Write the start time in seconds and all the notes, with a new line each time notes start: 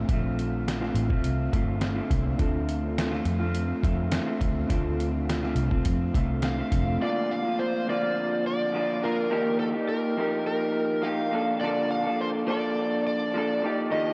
Already playing: A#2
0.09 A#1 D3 A3 C4, kick, closed hi-hat
0.13 F4
0.39 closed hi-hat
0.68 snare, closed hi-hat
0.81 A#2 D3 A3 C4 F4, snare
0.94 A1, closed hi-hat
1.09 A3 C4 F4, kick
1.24 C2, closed hi-hat
1.52 G1 D3 A3 C4 F4, kick, closed hi-hat
1.81 snare, closed hi-hat
1.95 A#2 D3 A3 C4 F4
2.10 C2, kick, closed hi-hat
2.36 D2 D3 A3 C4 D4 F4, kick, closed hi-hat
2.41 C4 F4 A4
2.69 closed hi-hat
2.98 snare, closed hi-hat
3.11 D3 A3 C4 F4, snare
3.25 F2, closed hi-hat
3.40 A3 C4 F4
3.55 closed hi-hat
3.83 F2 D3 A3 C4, kick, closed hi-hat
3.87 F4
4.12 snare, closed hi-hat
4.27 D3 A3 C4 F4
4.41 D2, kick, closed hi-hat
4.67 D2 D3 A3 C4 D4 F4, kick, closed hi-hat
4.72 C4 F4 A4
5.00 closed hi-hat
5.30 snare, closed hi-hat
5.43 D3 A3 C4 F4, snare
5.55 C2, closed hi-hat
5.71 A3 C4 F4, kick
5.85 F2, kick, closed hi-hat
6.14 C2 D3 A3 C4 F4, kick, closed hi-hat
6.42 F5, snare, closed hi-hat
6.58 D3 A3 C4 F4
6.71 F1, kick, closed hi-hat
7.00 G2 D3 F3 A#3 F4 D5
7.31 F5
7.43 A#3 F4
7.47 F3
7.59 C5
7.87 D3 F3 A#3 F4 D5
8.47 D5
8.73 D3 F3 A#3 F4
9.02 D3 F3 A#3 F4 A#4
9.30 D#3 F3 A#3 D#4 G4
9.59 A4
9.73 A#3 D#4 G4
9.89 A#4
10.17 F3 A#3 D#4 G4
10.47 A#4
11.02 F3 A#3 D#4 F5
11.06 G4
11.31 F3 A#3 D4 A4
11.61 A#2 D3 F3 A#3 D4 A4 D5
11.91 F5
12.04 A#3 D4 A4
12.08 F3
12.21 C5
12.46 F3 A#3 D4 A4 D5
13.07 D5
13.34 F3 A#3 D4 A4
13.62 F3 A#3 D#4 G4
13.90 D#3 F3 A#3 D#4 G4 D#5